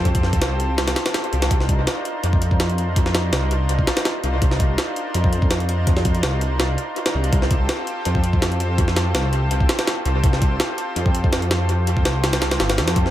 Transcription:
<<
  \new Staff \with { instrumentName = "Analog synth pad" } { \time 4/4 \key f \mixolydian \tempo 4 = 165 <c' f' g' a' c''>2.~ <c' f' g' a' c''>16 <c' f' g' a' c''>8. | <d' ees' f' bes' c''>2.~ <d' ees' f' bes' c''>8 <d' ees' f' bes' c''>8 | <d' ees' f' bes' c''>2.~ <d' ees' f' bes' c''>8 <d' ees' f' bes' c''>8 | <d' ees' f' bes' c''>2.~ <d' ees' f' bes' c''>8 <d' ees' f' bes' c''>8 |
<d' ees' f' bes' c''>2.~ <d' ees' f' bes' c''>16 <d' ees' f' bes' c''>8. | <c' f' g' a' c''>2.~ <c' f' g' a' c''>8 <c' f' g' a' c''>8 | <c' f' g' a' c''>2.~ <c' f' g' a' c''>8 <c' f' g' a' c''>8 | <c' f' g' a' c''>2.~ <c' f' g' a' c''>8 <c' f' g' a' c''>8 |
<c' f' g' a' c''>2.~ <c' f' g' a' c''>16 <c' f' g' a' c''>8. | }
  \new Staff \with { instrumentName = "Detuned saw bass" } { \clef bass \time 4/4 \key f \mixolydian f,4 c,4 c,8 r4 c,8 | c,4 r4 f,2~ | f,4 c,4 c,8 r4 c,8 | c,4 r4 f,2~ |
f,4 c,4 c,8 r4 c,8 | c,4 r4 f,2~ | f,4 c,4 c,8 r4 c,8 | c,4 r4 f,2~ |
f,4 c,4 c,8 g,,8 f,4 | }
  \new DrumStaff \with { instrumentName = "Drums" } \drummode { \time 4/4 <hh bd>16 <hh bd>16 sn16 <hh bd>16 <hh sn>8 hh8 <hh sn>16 <hh sn>16 <hh sn>16 <hh sn>16 <hh sn>16 hh16 hh16 <hh sn>16 | <hh bd>16 sn16 <hh bd>8 <hh sn>8 hh8 hh16 bd16 hh16 bd16 <hh sn>16 hh16 hh8 | <hh bd>16 sn16 <hh sn>8 <hh sn>8 hh8 hh16 bd16 <hh sn>16 <hh sn>16 <hh sn>8 hh8 | <hh bd>16 sn16 <hh bd>8 <hh sn>8 hh8 hh16 bd16 hh16 bd16 <hh sn>16 hh16 hh8 |
<hh bd>16 sn16 <hh bd>16 hh16 <hh sn>8 hh8 <hh sn>8 hh8 hh16 <hh sn>8 hh16 | <hh bd>16 sn16 <hh bd>8 <hh sn>8 hh8 hh16 bd16 hh16 bd16 <hh sn>16 hh16 hh8 | <hh bd>16 sn16 <hh sn>8 <hh sn>8 hh8 hh16 bd16 <hh sn>16 <hh sn>16 <hh sn>8 hh8 | <hh bd>16 sn16 <hh bd>8 <hh sn>8 hh8 hh16 bd16 hh16 bd16 <hh sn>16 hh16 <hh sn>8 |
hh8 hh16 bd16 <hh sn>8 <hh sn>16 <hh sn>16 <hh sn>16 <hh sn>16 <hh sn>16 <hh sn>16 <hh sn>16 <hh sn>16 <hh bd>16 sn16 | }
>>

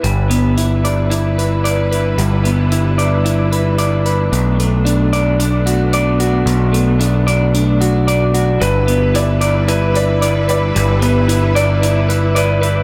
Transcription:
<<
  \new Staff \with { instrumentName = "Felt piano" } { \time 4/4 \key g \major \tempo 4 = 112 r1 | r1 | r1 | r1 |
b'4 d''4 b'8 d''4 d''8~ | d''8 b'4 d''4 r8 b'4 | }
  \new Staff \with { instrumentName = "Clean electric guitar" } { \time 4/4 \key g \major g8 b8 e'8 d''8 e'8 b'8 d''8 b'8 | g8 b8 e'8 d''8 e'8 b'8 d''8 b'8 | b,8 a8 d'8 d''8 d'8 fis'8 d''8 fis'8 | b,8 a8 d'8 d''8 d'8 fis'8 d''8 fis'8 |
g8 b8 e'8 d''8 e'8 b'8 d''8 b'8 | g8 b8 e'8 d''8 e'8 b'8 d''8 b'8 | }
  \new Staff \with { instrumentName = "String section" } { \time 4/4 \key g \major <g d' e' b'>1~ | <g d' e' b'>1 | <a b>1~ | <a b>1 |
<g e' b'>1~ | <g e' b'>1 | }
  \new Staff \with { instrumentName = "Picked electric bass" } { \clef bass \time 4/4 \key g \major g,,1 | g,,1 | b,,1 | b,,1 |
g,,1 | g,,1 | }
  \new DrumStaff \with { instrumentName = "Drums" } \drummode { \time 4/4 hh8 hh8 hh8 hh8 hh8 hh8 hh8 hh8 | hh8 hh8 hh8 hh8 hh8 hh8 hh8 hh8 | hh8 hh8 hh8 hh8 hh8 hh8 hh8 hh8 | hh8 hh8 hh8 hh8 hh8 hh8 hh8 hh8 |
hh8 hh8 hh8 hh8 hh8 hh8 hh8 hh8 | hh8 hh8 hh8 hh8 hh8 hh8 hh8 hh8 | }
>>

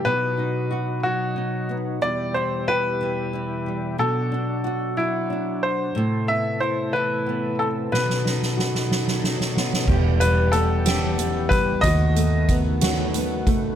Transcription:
<<
  \new Staff \with { instrumentName = "Grand piano" } { \time 6/8 \key e \minor \tempo 4. = 61 b'4. fis'4 r8 | d''8 c''8 b'2 | a'4. e'4 c''8~ | c''8 e''8 c''8 b'4 a'8 |
b'2 r4 | r8 b'8 a'4. b'8 | dis''4 r2 | }
  \new Staff \with { instrumentName = "Nylon-string guitar" } { \time 6/8 \key e \minor b,8 dis'8 fis'8 fis8 dis'8 b8 | e,8 e'8 g'8 e8 e'8 g8 | b,8 d'8 fis'8 fis8 d'4 | a,8 b8 e'8 e8 b8 c'8 |
b,8 dis'8 fis'8 fis8 dis'8 b8 | <e, g'>8 g8 b8 g'8 b8 g8 | <dis fis'>8 a8 b8 fis'8 b8 a8 | }
  \new Staff \with { instrumentName = "Tonewheel organ" } { \time 6/8 \key e \minor << { fis'2. | g'2. | fis'2. | a'2.~ |
a'2. | g'2. | fis'2. | } \\ { dis'2. | e'2. | d'2. | e'2. |
dis'2. | b2.~ | b2. | } >> }
  \new Staff \with { instrumentName = "Tonewheel organ" } { \clef bass \time 6/8 \key e \minor << { fis2. | g2. | fis2. | a2. |
fis2. | g2. | a2. | } \\ { b,2. | b,2.~ | b,2. | c2. |
b,2. | e2. | dis2. | } >> }
  \new Staff \with { instrumentName = "Fingered electric bass" } { \clef bass \time 6/8 \key e \minor r2. | r2. | r2. | r2. |
r2. | e,,2. | dis,2. | }
  \new DrumStaff \with { instrumentName = "Drums" } \drummode { \time 6/8 r4. r4. | r4. r4. | r4. r4. | r4. r4. |
sn16 sn16 sn16 sn16 sn16 sn16 sn16 sn16 sn16 sn16 sn16 sn16 | <cymc bd>8 hh8 hh8 <hh sn>8 hh8 <hh bd>8 | <hh bd>8 hh8 <hh bd>8 <hh sn>8 hh8 <hh bd>8 | }
>>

